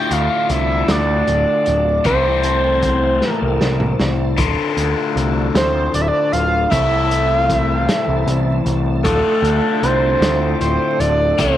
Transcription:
Already playing: D2 A2 D3 A3 D4 F4 G5 A5
0.11 D2 F5, closed hi-hat
0.49 C2 E5, closed hi-hat
0.88 D2 D5, snare, closed hi-hat
1.27 D1, closed hi-hat
1.66 D1, closed hi-hat
2.04 C2 A2 E3 A3 C4 E4 A4 C5, kick, closed hi-hat
2.43 closed hi-hat
2.82 kick, closed hi-hat
3.22 snare
3.30 A#4
3.42 C2
3.61 C2, snare
3.80 mid tom
3.99 C2, snare
4.37 D1 D2 A2 D3 A3 D4 F4, kick, closed hi-hat
4.77 D2, closed hi-hat
5.16 C2, closed hi-hat
5.54 D2 C5, snare, closed hi-hat
5.94 D1 D5, closed hi-hat
6.01 E5
6.08 D5
6.32 D1 F5, closed hi-hat
6.70 C2 A2 E3 A3 C4 E4 A4 E5, kick, closed hi-hat
7.11 closed hi-hat
7.41 F5
7.50 kick, closed hi-hat
7.55 E5
7.79 F5
7.89 snare, closed hi-hat
7.93 E5
8.08 C2
8.27 C2, closed hi-hat
8.66 C2, closed hi-hat
9.03 D1 D2 A2 D3 A3 D4 F4 A4, kick, closed hi-hat
9.08 A4
9.42 D2, closed hi-hat
9.83 C2 C5, closed hi-hat
10.20 D2, snare, closed hi-hat
10.60 D1 C5, closed hi-hat
10.99 D1 D5, closed hi-hat
11.38 C2 A2 E3 A3 C4 E4 A4 C5, kick, closed hi-hat

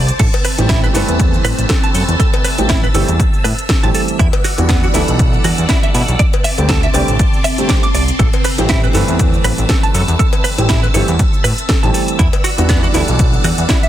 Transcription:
Already playing: C2 C5 A5 D6
0.08 closed hi-hat, shaker
0.19 A1 C4 A4 E6, kick, closed hi-hat, crash, shaker
0.33 closed hi-hat, cowbell, shaker
0.45 B4, open hi-hat, shaker
0.58 A1 E3 G3 A3 C4 G4, closed hi-hat, cowbell, shaker
0.69 E4, kick, snare, closed hi-hat, shaker
0.84 B4, shaker
0.93 G1 E3 G3 A3 C4 A4 B4, snare, open hi-hat, cowbell, shaker
1.08 E2, closed hi-hat, shaker
1.20 kick, closed hi-hat, shaker
1.34 shaker
1.44 A1 B4, open hi-hat, shaker
1.58 A1, closed hi-hat, shaker
1.69 A4, kick, snare, closed hi-hat, shaker
1.83 A5, closed hi-hat, shaker
1.94 F#2 A4, open hi-hat, shaker
2.08 E2, closed hi-hat, shaker
2.20 A4, kick, closed hi-hat, shaker
2.33 closed hi-hat, cowbell, shaker
2.44 B4, open hi-hat, shaker
2.58 A1 E3 G3 A3 C4 G4, closed hi-hat, cowbell, shaker
2.69 E4, kick, snare, closed hi-hat, shaker
2.84 B4, shaker
2.94 G1 E3 G3 A3 C4 G4 A4, open hi-hat, cowbell, shaker
3.08 E2, closed hi-hat, shaker
3.20 kick, closed hi-hat, shaker
3.34 shaker
3.44 A2 B4, open hi-hat, shaker
3.58 closed hi-hat, shaker
3.69 A4, kick, snare, closed hi-hat, shaker
3.83 A1 E3 G3 A3 C4 G4 A5, closed hi-hat, shaker
3.95 A4, open hi-hat, shaker
4.08 closed hi-hat, shaker
4.19 E2 E4 D5 F#5, kick, closed hi-hat, shaker
4.33 closed hi-hat, cowbell, shaker
4.44 F#4, open hi-hat, shaker
4.58 E2 E3 G3 B3 D4 F#4, closed hi-hat, cowbell, shaker
4.69 B3, kick, snare, closed hi-hat, shaker
4.83 F#4, shaker
4.94 D2 E3 G3 B3 D4 E4 A4, snare, open hi-hat, cowbell, shaker
5.08 B1, closed hi-hat, shaker
5.19 kick, closed hi-hat, shaker
5.33 shaker
5.44 E2 F#4, open hi-hat, shaker
5.58 E2, closed hi-hat, shaker
5.69 E4, kick, snare, closed hi-hat, shaker
5.83 E5, closed hi-hat, shaker
5.94 B2 E4, open hi-hat, shaker
6.08 B1, closed hi-hat, shaker
6.19 C4 D5 A5 D6, kick, closed hi-hat, shaker
6.33 closed hi-hat, cowbell, shaker
6.44 E5, open hi-hat, shaker
6.58 D2 D3 G3 A3 C4 G4, closed hi-hat, cowbell, shaker
6.69 A4, kick, snare, closed hi-hat, shaker
6.83 E5, closed hi-hat, shaker
6.94 C2 D3 G3 A3 C4 G4 D5, open hi-hat, cowbell, shaker
7.08 A1, closed hi-hat, shaker
7.19 kick, closed hi-hat, shaker
7.33 shaker
7.44 E5, open hi-hat, shaker
7.58 D3 G3 A3 C4 G4, closed hi-hat, shaker
7.69 D5, kick, snare, closed hi-hat, shaker
7.83 D6, closed hi-hat, shaker
7.95 C2 D5, open hi-hat, shaker
8.08 closed hi-hat, shaker
8.19 A1 A4 A5 E6, kick, closed hi-hat, shaker
8.33 closed hi-hat, cowbell, shaker
8.44 B4, open hi-hat, shaker
8.58 A1 E3 G3 A3 C4 G4, closed hi-hat, cowbell, shaker
8.69 E4, kick, snare, closed hi-hat, shaker
8.83 B4, shaker
8.93 G1 E3 G3 A3 C4 A4 B4, snare, open hi-hat, cowbell, shaker
9.08 E2, closed hi-hat, shaker
9.19 kick, closed hi-hat, shaker
9.34 shaker
9.44 A1 B4, open hi-hat, shaker
9.58 A1, closed hi-hat, shaker
9.69 A4, kick, snare, closed hi-hat, shaker
9.83 A5, closed hi-hat, shaker
9.94 F#2 A4, open hi-hat, shaker
10.08 E2, closed hi-hat, shaker
10.19 A4, kick, closed hi-hat, shaker
10.33 closed hi-hat, cowbell, shaker
10.44 B4, open hi-hat, shaker
10.58 A1 E3 G3 A3 C4 G4, closed hi-hat, cowbell, shaker
10.69 E4, kick, snare, closed hi-hat, shaker
10.83 B4, shaker
10.94 G1 E3 G3 A3 C4 G4 A4, open hi-hat, cowbell, shaker
11.08 E2, closed hi-hat, shaker
11.19 kick, closed hi-hat, shaker
11.34 shaker
11.44 A2 B4, open hi-hat, shaker
11.58 closed hi-hat, shaker
11.69 A4, kick, snare, closed hi-hat, shaker
11.83 A1 E3 G3 A3 C4 G4 A5, closed hi-hat, shaker
11.94 A4, open hi-hat, shaker
12.08 closed hi-hat, shaker
12.19 E2 E4 D5 F#5, kick, closed hi-hat, shaker
12.33 closed hi-hat, cowbell, shaker
12.44 F#4, open hi-hat, shaker
12.58 E2 E3 G3 B3 D4 F#4, closed hi-hat, cowbell, shaker
12.69 B3, kick, snare, closed hi-hat, shaker
12.83 F#4, shaker
12.94 D2 E3 G3 B3 D4 E4 A4, snare, open hi-hat, cowbell, shaker
13.08 B1, closed hi-hat, shaker
13.19 kick, closed hi-hat, shaker
13.33 shaker
13.44 E2 F#4, open hi-hat, shaker
13.58 E2, closed hi-hat, shaker
13.69 E4, kick, snare, closed hi-hat, shaker
13.83 E5, closed hi-hat, shaker

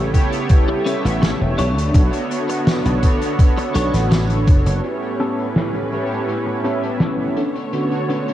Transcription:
Already playing: C#3 G3 A3 B3 E4 G4 A4 C#5
0.13 B3 E4 G4 A4 C#5, kick, closed hi-hat
0.32 closed hi-hat
0.49 kick, closed hi-hat
0.68 muted clean electric guitar stroke
0.85 B3 C#4 E4 G4 A4 B4 E5, closed hi-hat
1.05 A1, closed hi-hat
1.22 muted clean electric guitar stroke, snare, closed hi-hat
1.41 E1, muted clean electric guitar stroke
1.58 B1 D3 B3 D4 A4 C#5, closed hi-hat
1.77 D2, closed hi-hat
1.93 B1 B3 D4 F#4 A4 C#5, kick, closed hi-hat
2.13 muted clean electric guitar stroke, closed hi-hat
2.31 closed hi-hat
2.49 muted clean electric guitar stroke, closed hi-hat
2.67 muted clean electric guitar stroke, snare, closed hi-hat
2.85 B1, closed hi-hat
3.01 B3 D4 F#4 A4 C#5, kick, closed hi-hat
3.22 closed hi-hat
3.39 kick, closed hi-hat
3.58 muted clean electric guitar stroke, closed hi-hat
3.75 B1 D4 A4 C#5, closed hi-hat
3.94 A1, snare, closed hi-hat
4.11 muted clean electric guitar stroke, snare, closed hi-hat
4.30 muted clean electric guitar stroke, closed hi-hat
4.47 F#1, kick, closed hi-hat
4.66 F#1, muted clean electric guitar stroke, closed hi-hat
4.82 A2 G3 B3 C#4 E4 G4 A4 B4 C#5, closed hi-hat
5.02 closed hi-hat
5.20 B3 C#4 G4 A4, closed hi-hat
5.39 closed hi-hat
5.56 snare, closed hi-hat
5.75 muted clean electric guitar stroke, closed hi-hat
5.92 B3 E4 G4 A4 C#5, muted clean electric guitar stroke, closed hi-hat
6.11 closed hi-hat
6.28 muted clean electric guitar stroke, closed hi-hat
6.47 muted clean electric guitar stroke
6.64 B3 C#4 E4 G4 A4 E5, closed hi-hat
6.83 closed hi-hat
7.00 snare, closed hi-hat
7.36 B2 D3 A3 B3 C#4 D4 A4 C#5, closed hi-hat
7.55 closed hi-hat
7.71 D3 B3 F#4 A4 C#5, closed hi-hat
7.91 closed hi-hat
8.09 B3 C#4 D4 B4, closed hi-hat
8.28 closed hi-hat

